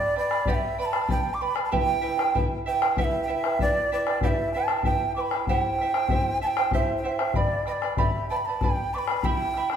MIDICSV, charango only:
0, 0, Header, 1, 2, 480
1, 0, Start_track
1, 0, Key_signature, 1, "minor"
1, 0, Tempo, 626305
1, 1323, Time_signature, 6, 3, 24, 8
1, 7484, End_track
2, 0, Start_track
2, 0, Title_t, "Charango"
2, 0, Program_c, 0, 24
2, 0, Note_on_c, 0, 71, 49
2, 0, Note_on_c, 0, 74, 58
2, 0, Note_on_c, 0, 79, 50
2, 0, Note_on_c, 0, 83, 59
2, 112, Note_off_c, 0, 79, 0
2, 114, Note_off_c, 0, 71, 0
2, 119, Note_off_c, 0, 74, 0
2, 122, Note_on_c, 0, 79, 50
2, 123, Note_off_c, 0, 83, 0
2, 123, Note_on_c, 0, 71, 55
2, 129, Note_on_c, 0, 74, 55
2, 135, Note_on_c, 0, 83, 60
2, 229, Note_off_c, 0, 83, 0
2, 238, Note_off_c, 0, 74, 0
2, 239, Note_on_c, 0, 83, 49
2, 240, Note_off_c, 0, 71, 0
2, 241, Note_off_c, 0, 79, 0
2, 247, Note_on_c, 0, 74, 45
2, 249, Note_on_c, 0, 71, 39
2, 357, Note_off_c, 0, 71, 0
2, 359, Note_off_c, 0, 74, 0
2, 360, Note_off_c, 0, 83, 0
2, 362, Note_on_c, 0, 67, 68
2, 366, Note_on_c, 0, 71, 73
2, 368, Note_on_c, 0, 74, 77
2, 368, Note_on_c, 0, 79, 70
2, 369, Note_on_c, 0, 83, 71
2, 591, Note_off_c, 0, 79, 0
2, 597, Note_off_c, 0, 71, 0
2, 597, Note_off_c, 0, 74, 0
2, 599, Note_off_c, 0, 83, 0
2, 600, Note_on_c, 0, 79, 51
2, 602, Note_off_c, 0, 67, 0
2, 606, Note_on_c, 0, 71, 57
2, 606, Note_on_c, 0, 74, 54
2, 609, Note_on_c, 0, 83, 65
2, 704, Note_off_c, 0, 83, 0
2, 713, Note_on_c, 0, 83, 48
2, 716, Note_off_c, 0, 74, 0
2, 721, Note_off_c, 0, 71, 0
2, 721, Note_off_c, 0, 79, 0
2, 725, Note_on_c, 0, 74, 47
2, 730, Note_on_c, 0, 71, 40
2, 831, Note_on_c, 0, 79, 48
2, 832, Note_off_c, 0, 71, 0
2, 835, Note_off_c, 0, 74, 0
2, 838, Note_off_c, 0, 83, 0
2, 842, Note_on_c, 0, 71, 57
2, 844, Note_on_c, 0, 74, 61
2, 847, Note_on_c, 0, 83, 58
2, 1069, Note_off_c, 0, 79, 0
2, 1075, Note_off_c, 0, 71, 0
2, 1077, Note_off_c, 0, 74, 0
2, 1077, Note_off_c, 0, 83, 0
2, 1078, Note_on_c, 0, 79, 47
2, 1084, Note_on_c, 0, 71, 53
2, 1086, Note_on_c, 0, 74, 54
2, 1086, Note_on_c, 0, 83, 53
2, 1176, Note_off_c, 0, 83, 0
2, 1185, Note_on_c, 0, 83, 44
2, 1187, Note_off_c, 0, 74, 0
2, 1190, Note_off_c, 0, 71, 0
2, 1196, Note_on_c, 0, 74, 48
2, 1199, Note_on_c, 0, 71, 39
2, 1200, Note_off_c, 0, 79, 0
2, 1310, Note_off_c, 0, 71, 0
2, 1314, Note_off_c, 0, 83, 0
2, 1315, Note_on_c, 0, 67, 73
2, 1316, Note_off_c, 0, 74, 0
2, 1316, Note_on_c, 0, 64, 66
2, 1317, Note_on_c, 0, 76, 71
2, 1319, Note_on_c, 0, 71, 76
2, 1322, Note_on_c, 0, 79, 76
2, 1534, Note_off_c, 0, 76, 0
2, 1539, Note_off_c, 0, 64, 0
2, 1542, Note_off_c, 0, 71, 0
2, 1543, Note_on_c, 0, 76, 54
2, 1545, Note_off_c, 0, 79, 0
2, 1548, Note_on_c, 0, 64, 62
2, 1551, Note_on_c, 0, 71, 60
2, 1554, Note_on_c, 0, 79, 58
2, 1559, Note_off_c, 0, 67, 0
2, 1657, Note_off_c, 0, 79, 0
2, 1662, Note_off_c, 0, 71, 0
2, 1666, Note_on_c, 0, 79, 47
2, 1671, Note_off_c, 0, 64, 0
2, 1672, Note_on_c, 0, 71, 38
2, 1673, Note_off_c, 0, 76, 0
2, 1680, Note_on_c, 0, 64, 37
2, 1791, Note_off_c, 0, 64, 0
2, 1792, Note_off_c, 0, 71, 0
2, 1794, Note_off_c, 0, 79, 0
2, 1796, Note_on_c, 0, 76, 56
2, 1800, Note_on_c, 0, 64, 52
2, 1801, Note_on_c, 0, 71, 54
2, 1804, Note_on_c, 0, 79, 57
2, 2028, Note_off_c, 0, 76, 0
2, 2030, Note_off_c, 0, 64, 0
2, 2037, Note_on_c, 0, 76, 56
2, 2038, Note_off_c, 0, 79, 0
2, 2039, Note_off_c, 0, 71, 0
2, 2039, Note_on_c, 0, 64, 57
2, 2047, Note_on_c, 0, 79, 64
2, 2048, Note_on_c, 0, 71, 57
2, 2151, Note_off_c, 0, 79, 0
2, 2160, Note_off_c, 0, 71, 0
2, 2160, Note_off_c, 0, 76, 0
2, 2160, Note_on_c, 0, 79, 46
2, 2161, Note_off_c, 0, 64, 0
2, 2169, Note_on_c, 0, 71, 46
2, 2176, Note_on_c, 0, 64, 41
2, 2276, Note_off_c, 0, 64, 0
2, 2278, Note_off_c, 0, 71, 0
2, 2278, Note_off_c, 0, 79, 0
2, 2282, Note_on_c, 0, 67, 65
2, 2285, Note_on_c, 0, 64, 70
2, 2285, Note_on_c, 0, 76, 75
2, 2287, Note_on_c, 0, 71, 78
2, 2287, Note_on_c, 0, 79, 78
2, 2502, Note_off_c, 0, 76, 0
2, 2512, Note_off_c, 0, 71, 0
2, 2512, Note_on_c, 0, 76, 55
2, 2513, Note_off_c, 0, 64, 0
2, 2520, Note_off_c, 0, 79, 0
2, 2521, Note_on_c, 0, 71, 52
2, 2522, Note_on_c, 0, 64, 58
2, 2523, Note_off_c, 0, 67, 0
2, 2529, Note_on_c, 0, 79, 54
2, 2629, Note_off_c, 0, 79, 0
2, 2636, Note_off_c, 0, 71, 0
2, 2638, Note_off_c, 0, 76, 0
2, 2638, Note_on_c, 0, 79, 49
2, 2643, Note_off_c, 0, 64, 0
2, 2645, Note_on_c, 0, 71, 45
2, 2651, Note_on_c, 0, 64, 40
2, 2756, Note_off_c, 0, 64, 0
2, 2761, Note_off_c, 0, 79, 0
2, 2761, Note_on_c, 0, 76, 48
2, 2762, Note_off_c, 0, 71, 0
2, 2765, Note_on_c, 0, 64, 54
2, 2771, Note_on_c, 0, 71, 56
2, 2774, Note_on_c, 0, 79, 56
2, 2992, Note_off_c, 0, 64, 0
2, 2994, Note_off_c, 0, 76, 0
2, 2999, Note_off_c, 0, 71, 0
2, 3001, Note_off_c, 0, 79, 0
2, 3001, Note_on_c, 0, 64, 51
2, 3004, Note_on_c, 0, 76, 55
2, 3009, Note_on_c, 0, 71, 53
2, 3010, Note_on_c, 0, 79, 63
2, 3109, Note_off_c, 0, 79, 0
2, 3113, Note_off_c, 0, 71, 0
2, 3118, Note_off_c, 0, 64, 0
2, 3118, Note_on_c, 0, 79, 45
2, 3122, Note_on_c, 0, 71, 42
2, 3124, Note_off_c, 0, 76, 0
2, 3128, Note_on_c, 0, 64, 34
2, 3234, Note_off_c, 0, 71, 0
2, 3238, Note_off_c, 0, 64, 0
2, 3241, Note_off_c, 0, 79, 0
2, 3242, Note_on_c, 0, 67, 62
2, 3243, Note_on_c, 0, 71, 73
2, 3243, Note_on_c, 0, 76, 60
2, 3247, Note_on_c, 0, 64, 70
2, 3249, Note_on_c, 0, 79, 68
2, 3473, Note_off_c, 0, 76, 0
2, 3476, Note_off_c, 0, 64, 0
2, 3482, Note_on_c, 0, 76, 52
2, 3483, Note_off_c, 0, 67, 0
2, 3483, Note_off_c, 0, 71, 0
2, 3486, Note_off_c, 0, 79, 0
2, 3486, Note_on_c, 0, 64, 51
2, 3493, Note_on_c, 0, 71, 61
2, 3496, Note_on_c, 0, 79, 60
2, 3585, Note_off_c, 0, 79, 0
2, 3594, Note_on_c, 0, 79, 48
2, 3595, Note_off_c, 0, 71, 0
2, 3597, Note_off_c, 0, 64, 0
2, 3603, Note_off_c, 0, 76, 0
2, 3604, Note_on_c, 0, 71, 41
2, 3607, Note_on_c, 0, 64, 36
2, 3710, Note_off_c, 0, 64, 0
2, 3714, Note_off_c, 0, 71, 0
2, 3715, Note_off_c, 0, 79, 0
2, 3716, Note_on_c, 0, 76, 48
2, 3719, Note_on_c, 0, 64, 52
2, 3723, Note_on_c, 0, 71, 52
2, 3724, Note_on_c, 0, 79, 54
2, 3947, Note_off_c, 0, 76, 0
2, 3951, Note_off_c, 0, 64, 0
2, 3956, Note_off_c, 0, 71, 0
2, 3957, Note_on_c, 0, 76, 51
2, 3961, Note_off_c, 0, 79, 0
2, 3961, Note_on_c, 0, 64, 55
2, 3965, Note_on_c, 0, 71, 58
2, 3970, Note_on_c, 0, 79, 61
2, 4071, Note_off_c, 0, 79, 0
2, 4077, Note_off_c, 0, 71, 0
2, 4080, Note_off_c, 0, 76, 0
2, 4080, Note_on_c, 0, 79, 47
2, 4082, Note_off_c, 0, 64, 0
2, 4086, Note_on_c, 0, 71, 41
2, 4095, Note_on_c, 0, 64, 35
2, 4201, Note_off_c, 0, 64, 0
2, 4202, Note_off_c, 0, 79, 0
2, 4205, Note_off_c, 0, 71, 0
2, 4208, Note_on_c, 0, 76, 62
2, 4209, Note_on_c, 0, 67, 66
2, 4210, Note_on_c, 0, 64, 73
2, 4210, Note_on_c, 0, 72, 69
2, 4215, Note_on_c, 0, 79, 68
2, 4444, Note_off_c, 0, 76, 0
2, 4446, Note_off_c, 0, 67, 0
2, 4447, Note_off_c, 0, 64, 0
2, 4447, Note_off_c, 0, 72, 0
2, 4449, Note_off_c, 0, 79, 0
2, 4453, Note_on_c, 0, 76, 52
2, 4458, Note_on_c, 0, 64, 58
2, 4463, Note_on_c, 0, 72, 54
2, 4467, Note_on_c, 0, 79, 61
2, 4548, Note_off_c, 0, 72, 0
2, 4550, Note_off_c, 0, 79, 0
2, 4553, Note_off_c, 0, 64, 0
2, 4557, Note_on_c, 0, 72, 43
2, 4559, Note_on_c, 0, 79, 45
2, 4563, Note_on_c, 0, 64, 37
2, 4568, Note_off_c, 0, 76, 0
2, 4674, Note_off_c, 0, 64, 0
2, 4676, Note_off_c, 0, 72, 0
2, 4676, Note_off_c, 0, 79, 0
2, 4676, Note_on_c, 0, 76, 54
2, 4683, Note_on_c, 0, 64, 54
2, 4685, Note_on_c, 0, 79, 53
2, 4686, Note_on_c, 0, 72, 58
2, 4905, Note_off_c, 0, 64, 0
2, 4907, Note_off_c, 0, 76, 0
2, 4910, Note_off_c, 0, 72, 0
2, 4914, Note_on_c, 0, 64, 57
2, 4915, Note_off_c, 0, 79, 0
2, 4916, Note_on_c, 0, 76, 56
2, 4920, Note_on_c, 0, 72, 59
2, 4925, Note_on_c, 0, 79, 56
2, 5038, Note_off_c, 0, 64, 0
2, 5039, Note_off_c, 0, 76, 0
2, 5040, Note_off_c, 0, 72, 0
2, 5040, Note_off_c, 0, 79, 0
2, 5049, Note_on_c, 0, 72, 43
2, 5049, Note_on_c, 0, 79, 50
2, 5055, Note_on_c, 0, 64, 41
2, 5156, Note_off_c, 0, 72, 0
2, 5158, Note_off_c, 0, 64, 0
2, 5159, Note_off_c, 0, 79, 0
2, 5160, Note_on_c, 0, 67, 65
2, 5165, Note_on_c, 0, 72, 75
2, 5167, Note_on_c, 0, 76, 60
2, 5168, Note_on_c, 0, 64, 70
2, 5168, Note_on_c, 0, 79, 70
2, 5383, Note_off_c, 0, 76, 0
2, 5391, Note_off_c, 0, 64, 0
2, 5392, Note_on_c, 0, 76, 51
2, 5395, Note_off_c, 0, 72, 0
2, 5396, Note_off_c, 0, 79, 0
2, 5400, Note_on_c, 0, 64, 52
2, 5401, Note_off_c, 0, 67, 0
2, 5404, Note_on_c, 0, 72, 54
2, 5405, Note_on_c, 0, 79, 62
2, 5502, Note_off_c, 0, 79, 0
2, 5507, Note_off_c, 0, 72, 0
2, 5511, Note_on_c, 0, 79, 52
2, 5516, Note_off_c, 0, 64, 0
2, 5517, Note_on_c, 0, 72, 42
2, 5518, Note_off_c, 0, 76, 0
2, 5525, Note_on_c, 0, 64, 37
2, 5625, Note_off_c, 0, 79, 0
2, 5634, Note_off_c, 0, 72, 0
2, 5634, Note_on_c, 0, 79, 49
2, 5637, Note_on_c, 0, 74, 51
2, 5638, Note_off_c, 0, 64, 0
2, 5641, Note_on_c, 0, 83, 60
2, 5642, Note_on_c, 0, 71, 47
2, 5865, Note_off_c, 0, 79, 0
2, 5866, Note_off_c, 0, 71, 0
2, 5873, Note_off_c, 0, 74, 0
2, 5874, Note_on_c, 0, 79, 53
2, 5875, Note_off_c, 0, 83, 0
2, 5876, Note_on_c, 0, 71, 53
2, 5882, Note_on_c, 0, 74, 50
2, 5884, Note_on_c, 0, 83, 57
2, 5992, Note_off_c, 0, 83, 0
2, 5994, Note_off_c, 0, 74, 0
2, 5995, Note_off_c, 0, 71, 0
2, 5998, Note_off_c, 0, 79, 0
2, 6001, Note_on_c, 0, 83, 43
2, 6003, Note_on_c, 0, 74, 39
2, 6004, Note_on_c, 0, 71, 36
2, 6108, Note_off_c, 0, 71, 0
2, 6110, Note_off_c, 0, 83, 0
2, 6113, Note_off_c, 0, 74, 0
2, 6115, Note_on_c, 0, 79, 67
2, 6117, Note_on_c, 0, 67, 67
2, 6118, Note_on_c, 0, 71, 73
2, 6119, Note_on_c, 0, 83, 75
2, 6122, Note_on_c, 0, 74, 69
2, 6354, Note_off_c, 0, 79, 0
2, 6358, Note_off_c, 0, 71, 0
2, 6360, Note_off_c, 0, 67, 0
2, 6361, Note_off_c, 0, 83, 0
2, 6362, Note_off_c, 0, 74, 0
2, 6363, Note_on_c, 0, 79, 52
2, 6367, Note_on_c, 0, 71, 57
2, 6372, Note_on_c, 0, 74, 58
2, 6374, Note_on_c, 0, 83, 61
2, 6482, Note_off_c, 0, 79, 0
2, 6483, Note_off_c, 0, 83, 0
2, 6484, Note_off_c, 0, 71, 0
2, 6487, Note_off_c, 0, 74, 0
2, 6492, Note_on_c, 0, 83, 44
2, 6500, Note_on_c, 0, 74, 42
2, 6508, Note_on_c, 0, 71, 36
2, 6604, Note_off_c, 0, 71, 0
2, 6606, Note_off_c, 0, 74, 0
2, 6607, Note_off_c, 0, 83, 0
2, 6609, Note_on_c, 0, 79, 48
2, 6613, Note_on_c, 0, 71, 60
2, 6615, Note_on_c, 0, 74, 49
2, 6622, Note_on_c, 0, 83, 61
2, 6844, Note_off_c, 0, 79, 0
2, 6847, Note_off_c, 0, 71, 0
2, 6848, Note_off_c, 0, 74, 0
2, 6852, Note_off_c, 0, 83, 0
2, 6853, Note_on_c, 0, 79, 54
2, 6857, Note_on_c, 0, 71, 55
2, 6863, Note_on_c, 0, 74, 52
2, 6863, Note_on_c, 0, 83, 63
2, 6959, Note_off_c, 0, 83, 0
2, 6967, Note_off_c, 0, 79, 0
2, 6968, Note_on_c, 0, 83, 52
2, 6969, Note_off_c, 0, 71, 0
2, 6969, Note_off_c, 0, 74, 0
2, 6979, Note_on_c, 0, 74, 45
2, 6983, Note_on_c, 0, 71, 37
2, 7079, Note_off_c, 0, 83, 0
2, 7081, Note_off_c, 0, 71, 0
2, 7084, Note_on_c, 0, 64, 78
2, 7085, Note_on_c, 0, 67, 66
2, 7087, Note_on_c, 0, 79, 65
2, 7088, Note_off_c, 0, 74, 0
2, 7088, Note_on_c, 0, 83, 78
2, 7091, Note_on_c, 0, 76, 72
2, 7319, Note_off_c, 0, 79, 0
2, 7323, Note_off_c, 0, 64, 0
2, 7323, Note_off_c, 0, 67, 0
2, 7324, Note_off_c, 0, 83, 0
2, 7326, Note_off_c, 0, 76, 0
2, 7328, Note_on_c, 0, 79, 56
2, 7331, Note_on_c, 0, 64, 55
2, 7337, Note_on_c, 0, 76, 58
2, 7339, Note_on_c, 0, 83, 57
2, 7444, Note_off_c, 0, 79, 0
2, 7446, Note_off_c, 0, 64, 0
2, 7446, Note_off_c, 0, 76, 0
2, 7446, Note_off_c, 0, 83, 0
2, 7455, Note_on_c, 0, 83, 46
2, 7456, Note_on_c, 0, 76, 41
2, 7460, Note_on_c, 0, 64, 36
2, 7484, Note_off_c, 0, 64, 0
2, 7484, Note_off_c, 0, 76, 0
2, 7484, Note_off_c, 0, 83, 0
2, 7484, End_track
0, 0, End_of_file